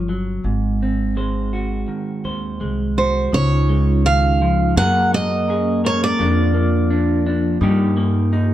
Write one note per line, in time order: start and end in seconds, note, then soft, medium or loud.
0.00 0.40 G1 medium
0.00 0.40 C#4 soft
0.00 0.40 F4 soft
0.00 0.40 C#5 soft
0.09 0.45 F#3 soft
0.44 1.83 G#1 medium
0.44 3.33 G#2 medium
0.82 3.29 C4 soft
1.17 2.60 G#3 soft
1.17 2.24 C5 soft
1.53 2.97 F#4 soft
1.88 3.28 D#3 soft
2.24 2.58 D#2 medium
2.24 3.29 C5 soft
2.61 3.29 C2 medium
2.61 3.29 G#3 soft
2.98 3.29 F#4 soft
2.98 3.34 C5 soft
3.33 4.73 C#2 medium
3.33 4.05 C#3 medium
3.33 4.84 D#4 medium
3.33 4.84 F4 medium
3.33 4.01 C#5 medium
3.69 4.73 G#3 medium
3.69 4.84 C#4 medium
4.05 4.41 D#3 medium
4.05 4.77 F5 medium
4.42 4.77 F3 medium
4.77 6.15 F#2 medium
4.77 6.15 F#3 medium
4.77 5.47 A#3 medium
4.77 5.13 A#3 soft
4.77 5.49 G#4 medium
4.77 5.84 A#4 medium
4.77 5.10 F#5 loud
5.13 6.19 A#3 medium
5.13 5.80 D#5 medium
5.48 5.82 A#3 medium
5.48 6.26 C#4 medium
5.48 6.20 G#4 medium
5.48 6.16 G#4 medium
5.84 6.26 A#3 medium
5.84 8.54 A#4 medium
5.84 6.02 C#5 medium
6.04 7.41 D5 medium
6.19 7.57 F2 medium
6.19 7.57 F3 medium
6.19 7.61 F3 medium
6.19 6.54 A#3 medium
6.19 6.89 D4 medium
6.19 7.69 F4 medium
6.54 7.62 A#3 medium
6.54 7.68 D4 medium
6.90 7.25 D4 medium
7.26 7.57 D4 medium
7.61 8.54 G2 medium
7.61 8.54 G3 medium
7.61 7.95 A#3 medium
7.61 8.33 D#4 medium
7.61 8.32 D#4 medium
7.61 8.54 G4 medium
7.97 8.54 A#3 medium
8.32 8.54 A#3 medium
8.32 8.54 D#4 medium
8.32 8.54 G4 medium